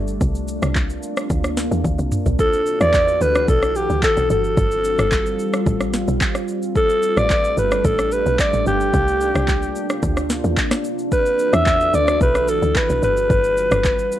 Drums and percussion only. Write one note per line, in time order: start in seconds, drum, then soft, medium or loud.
0.08 shaker medium
0.21 kick loud
0.21 shaker medium
0.35 shaker medium
0.48 shaker medium
0.62 cross-stick loud
0.62 shaker medium
0.75 kick loud
0.75 clap medium
0.75 shaker medium
0.90 shaker soft
1.03 shaker medium
1.17 cross-stick loud
1.17 shaker medium
1.30 kick loud
1.30 shaker medium
1.44 cross-stick medium
1.44 shaker medium
1.57 snare medium
1.57 shaker loud
1.72 shaker medium
1.84 kick medium
1.84 high tom medium
1.84 shaker medium
1.99 shaker medium
2.12 mid tom loud
2.12 shaker medium
2.26 floor tom medium
2.26 shaker medium
2.39 kick loud
2.39 shaker medium
2.53 shaker medium
2.66 shaker medium
2.80 cross-stick medium
2.80 shaker medium
2.94 kick loud
2.94 clap medium
2.94 shaker medium
3.08 shaker soft
3.21 shaker medium
3.35 cross-stick loud
3.35 shaker medium
3.48 kick loud
3.48 shaker medium
3.62 cross-stick medium
3.62 shaker medium
3.75 shaker loud
3.90 shaker soft
4.03 kick medium
4.03 clap loud
4.03 shaker medium
4.17 shaker medium
4.30 shaker medium
4.44 shaker medium
4.57 kick loud
4.57 shaker medium
4.71 shaker medium
4.84 shaker medium
4.99 cross-stick loud
4.99 shaker medium
5.12 kick medium
5.12 clap loud
5.12 shaker medium
5.26 shaker soft
5.39 shaker medium
5.53 cross-stick loud
5.53 shaker medium
5.66 kick loud
5.66 shaker medium
5.80 cross-stick medium
5.80 shaker medium
5.93 snare medium
5.93 shaker medium
6.08 shaker medium
6.21 kick medium
6.21 clap loud
6.21 shaker medium
6.35 cross-stick medium
6.35 shaker medium
6.48 shaker medium
6.62 shaker medium
6.75 kick loud
6.75 shaker medium
6.90 shaker medium
7.03 shaker medium
7.17 cross-stick medium
7.17 shaker medium
7.30 kick loud
7.30 clap medium
7.30 shaker medium
7.44 shaker soft
7.57 shaker medium
7.71 cross-stick loud
7.71 shaker medium
7.85 kick loud
7.85 shaker medium
7.99 cross-stick medium
7.99 shaker medium
8.12 shaker loud
8.26 shaker medium
8.39 kick medium
8.39 clap loud
8.39 shaker medium
8.53 shaker medium
8.66 shaker medium
8.81 shaker medium
8.94 kick loud
8.94 shaker medium
9.08 shaker medium
9.21 shaker medium
9.35 cross-stick loud
9.35 shaker medium
9.48 kick loud
9.48 clap medium
9.48 shaker medium
9.63 shaker soft
9.76 shaker medium
9.90 cross-stick loud
9.90 shaker medium
10.03 kick loud
10.03 shaker medium
10.17 cross-stick medium
10.17 shaker medium
10.30 snare medium
10.30 shaker loud
10.44 shaker medium
10.57 kick medium
10.57 clap medium
10.57 shaker medium
10.71 cross-stick medium
10.71 snare medium
10.71 shaker medium
10.84 shaker medium
10.99 shaker medium
11.12 kick loud
11.12 shaker medium
11.26 shaker medium
11.39 shaker medium
11.53 cross-stick loud
11.53 shaker medium
11.66 kick loud
11.66 clap medium
11.66 shaker medium
11.81 shaker soft
11.94 shaker medium
12.08 cross-stick loud
12.08 shaker medium
12.21 kick loud
12.21 shaker medium
12.35 cross-stick medium
12.35 shaker medium
12.48 shaker loud
12.62 shaker medium
12.75 kick medium
12.75 clap loud
12.75 shaker medium
12.90 shaker medium
13.03 shaker medium
13.17 shaker medium
13.30 kick loud
13.30 shaker medium
13.44 shaker medium
13.57 shaker medium
13.71 cross-stick loud
13.71 shaker medium
13.84 kick loud
13.84 clap medium
13.84 shaker medium
13.99 shaker soft
14.12 shaker medium